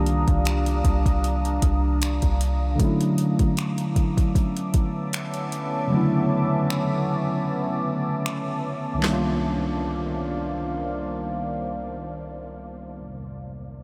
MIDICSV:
0, 0, Header, 1, 5, 480
1, 0, Start_track
1, 0, Tempo, 779221
1, 1720, Time_signature, 4, 2, 24, 8
1, 8521, End_track
2, 0, Start_track
2, 0, Title_t, "Ambient pad"
2, 0, Program_c, 0, 92
2, 0, Note_on_c, 0, 62, 78
2, 0, Note_on_c, 0, 77, 76
2, 0, Note_on_c, 0, 82, 74
2, 0, Note_on_c, 0, 87, 87
2, 1695, Note_off_c, 0, 62, 0
2, 1695, Note_off_c, 0, 77, 0
2, 1695, Note_off_c, 0, 82, 0
2, 1695, Note_off_c, 0, 87, 0
2, 1722, Note_on_c, 0, 61, 71
2, 1722, Note_on_c, 0, 76, 76
2, 1722, Note_on_c, 0, 81, 74
2, 1722, Note_on_c, 0, 86, 84
2, 1723, Note_on_c, 0, 59, 76
2, 5536, Note_off_c, 0, 61, 0
2, 5537, Note_off_c, 0, 59, 0
2, 5537, Note_off_c, 0, 76, 0
2, 5537, Note_off_c, 0, 81, 0
2, 5537, Note_off_c, 0, 86, 0
2, 5560, Note_on_c, 0, 72, 71
2, 5560, Note_on_c, 0, 77, 86
2, 5561, Note_on_c, 0, 51, 72
2, 5561, Note_on_c, 0, 70, 70
2, 5561, Note_on_c, 0, 74, 70
2, 7948, Note_off_c, 0, 72, 0
2, 7948, Note_off_c, 0, 77, 0
2, 7949, Note_off_c, 0, 51, 0
2, 7949, Note_off_c, 0, 70, 0
2, 7949, Note_off_c, 0, 74, 0
2, 8521, End_track
3, 0, Start_track
3, 0, Title_t, "Tine electric piano"
3, 0, Program_c, 1, 4
3, 0, Control_c, 1, 64, 127
3, 0, Note_on_c, 1, 51, 77
3, 0, Note_on_c, 1, 55, 71
3, 0, Note_on_c, 1, 58, 68
3, 0, Note_on_c, 1, 62, 73
3, 0, Note_on_c, 1, 65, 66
3, 0, Note_on_c, 1, 67, 83
3, 1683, Note_off_c, 1, 51, 0
3, 1690, Note_off_c, 1, 55, 0
3, 1696, Note_on_c, 1, 50, 73
3, 1697, Note_off_c, 1, 58, 0
3, 1704, Note_off_c, 1, 62, 0
3, 1711, Note_on_c, 1, 54, 73
3, 1725, Note_on_c, 1, 57, 67
3, 1729, Control_c, 1, 64, 0
3, 1732, Note_off_c, 1, 65, 0
3, 1732, Note_off_c, 1, 67, 0
3, 1740, Note_on_c, 1, 61, 67
3, 1754, Note_on_c, 1, 64, 84
3, 1841, Control_c, 1, 64, 127
3, 3604, Note_off_c, 1, 50, 0
3, 3611, Note_off_c, 1, 54, 0
3, 3617, Note_on_c, 1, 49, 60
3, 3618, Note_off_c, 1, 57, 0
3, 3625, Note_off_c, 1, 61, 0
3, 3632, Note_off_c, 1, 64, 0
3, 3632, Note_on_c, 1, 54, 65
3, 3646, Note_on_c, 1, 57, 68
3, 3657, Note_on_c, 1, 50, 78
3, 3660, Note_on_c, 1, 61, 65
3, 3672, Note_off_c, 1, 49, 0
3, 3675, Note_on_c, 1, 64, 80
3, 5507, Note_on_c, 1, 36, 73
3, 5531, Note_off_c, 1, 54, 0
3, 5531, Note_on_c, 1, 51, 69
3, 5539, Note_off_c, 1, 57, 0
3, 5544, Note_off_c, 1, 50, 0
3, 5546, Note_off_c, 1, 61, 0
3, 5553, Note_off_c, 1, 64, 0
3, 5554, Note_on_c, 1, 55, 69
3, 5568, Control_c, 1, 64, 0
3, 5577, Note_on_c, 1, 58, 68
3, 5600, Note_on_c, 1, 62, 66
3, 5624, Note_on_c, 1, 65, 81
3, 5692, Control_c, 1, 64, 127
3, 7988, Note_off_c, 1, 36, 0
3, 8012, Note_off_c, 1, 51, 0
3, 8035, Note_off_c, 1, 55, 0
3, 8058, Note_off_c, 1, 58, 0
3, 8082, Note_off_c, 1, 62, 0
3, 8105, Note_off_c, 1, 65, 0
3, 8521, End_track
4, 0, Start_track
4, 0, Title_t, "808-style bass"
4, 0, Program_c, 2, 38
4, 0, Note_on_c, 2, 36, 105
4, 156, Note_off_c, 2, 36, 0
4, 171, Note_on_c, 2, 36, 102
4, 507, Note_off_c, 2, 36, 0
4, 521, Note_on_c, 2, 36, 97
4, 982, Note_off_c, 2, 36, 0
4, 1002, Note_on_c, 2, 36, 109
4, 1356, Note_off_c, 2, 36, 0
4, 1372, Note_on_c, 2, 36, 97
4, 1707, Note_off_c, 2, 36, 0
4, 8521, End_track
5, 0, Start_track
5, 0, Title_t, "Drums"
5, 40, Note_on_c, 9, 42, 59
5, 101, Note_off_c, 9, 42, 0
5, 170, Note_on_c, 9, 42, 43
5, 171, Note_on_c, 9, 36, 91
5, 232, Note_off_c, 9, 36, 0
5, 232, Note_off_c, 9, 42, 0
5, 279, Note_on_c, 9, 42, 62
5, 288, Note_on_c, 9, 26, 104
5, 341, Note_off_c, 9, 42, 0
5, 350, Note_off_c, 9, 26, 0
5, 409, Note_on_c, 9, 42, 47
5, 470, Note_off_c, 9, 42, 0
5, 521, Note_on_c, 9, 36, 92
5, 521, Note_on_c, 9, 42, 77
5, 582, Note_off_c, 9, 36, 0
5, 583, Note_off_c, 9, 42, 0
5, 652, Note_on_c, 9, 36, 91
5, 654, Note_on_c, 9, 42, 50
5, 713, Note_off_c, 9, 36, 0
5, 715, Note_off_c, 9, 42, 0
5, 765, Note_on_c, 9, 42, 55
5, 826, Note_off_c, 9, 42, 0
5, 894, Note_on_c, 9, 42, 40
5, 955, Note_off_c, 9, 42, 0
5, 999, Note_on_c, 9, 42, 80
5, 1001, Note_on_c, 9, 36, 88
5, 1061, Note_off_c, 9, 42, 0
5, 1063, Note_off_c, 9, 36, 0
5, 1242, Note_on_c, 9, 42, 82
5, 1249, Note_on_c, 9, 26, 117
5, 1304, Note_off_c, 9, 42, 0
5, 1311, Note_off_c, 9, 26, 0
5, 1368, Note_on_c, 9, 42, 57
5, 1372, Note_on_c, 9, 36, 78
5, 1430, Note_off_c, 9, 42, 0
5, 1433, Note_off_c, 9, 36, 0
5, 1483, Note_on_c, 9, 42, 65
5, 1545, Note_off_c, 9, 42, 0
5, 1722, Note_on_c, 9, 36, 117
5, 1722, Note_on_c, 9, 42, 69
5, 1783, Note_off_c, 9, 36, 0
5, 1784, Note_off_c, 9, 42, 0
5, 1852, Note_on_c, 9, 42, 44
5, 1913, Note_off_c, 9, 42, 0
5, 1959, Note_on_c, 9, 42, 65
5, 2021, Note_off_c, 9, 42, 0
5, 2090, Note_on_c, 9, 42, 44
5, 2091, Note_on_c, 9, 36, 90
5, 2151, Note_off_c, 9, 42, 0
5, 2152, Note_off_c, 9, 36, 0
5, 2200, Note_on_c, 9, 42, 59
5, 2209, Note_on_c, 9, 26, 111
5, 2261, Note_off_c, 9, 42, 0
5, 2270, Note_off_c, 9, 26, 0
5, 2328, Note_on_c, 9, 42, 44
5, 2390, Note_off_c, 9, 42, 0
5, 2441, Note_on_c, 9, 36, 88
5, 2441, Note_on_c, 9, 42, 69
5, 2502, Note_off_c, 9, 36, 0
5, 2502, Note_off_c, 9, 42, 0
5, 2572, Note_on_c, 9, 36, 92
5, 2573, Note_on_c, 9, 42, 52
5, 2633, Note_off_c, 9, 36, 0
5, 2635, Note_off_c, 9, 42, 0
5, 2682, Note_on_c, 9, 36, 77
5, 2684, Note_on_c, 9, 42, 57
5, 2743, Note_off_c, 9, 36, 0
5, 2745, Note_off_c, 9, 42, 0
5, 2812, Note_on_c, 9, 42, 41
5, 2874, Note_off_c, 9, 42, 0
5, 2918, Note_on_c, 9, 42, 79
5, 2921, Note_on_c, 9, 36, 86
5, 2980, Note_off_c, 9, 42, 0
5, 2982, Note_off_c, 9, 36, 0
5, 3161, Note_on_c, 9, 42, 76
5, 3168, Note_on_c, 9, 26, 117
5, 3223, Note_off_c, 9, 42, 0
5, 3230, Note_off_c, 9, 26, 0
5, 3287, Note_on_c, 9, 42, 52
5, 3349, Note_off_c, 9, 42, 0
5, 3402, Note_on_c, 9, 42, 62
5, 3463, Note_off_c, 9, 42, 0
5, 4130, Note_on_c, 9, 26, 103
5, 4191, Note_off_c, 9, 26, 0
5, 5088, Note_on_c, 9, 26, 119
5, 5150, Note_off_c, 9, 26, 0
5, 5562, Note_on_c, 9, 39, 81
5, 5570, Note_on_c, 9, 38, 88
5, 5623, Note_off_c, 9, 39, 0
5, 5631, Note_off_c, 9, 38, 0
5, 8521, End_track
0, 0, End_of_file